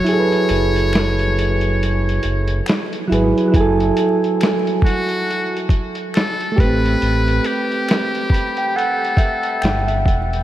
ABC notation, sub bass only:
X:1
M:4/4
L:1/16
Q:"Swing 16ths" 1/4=69
K:F#m
V:1 name="Sub bass" clef=bass
z2 F,,,8 F,,,2 z2 G,,, z | F,,,2 z12 A,,,2 | A,,,2 z8 z2 =G,,,2 E,,,2 |]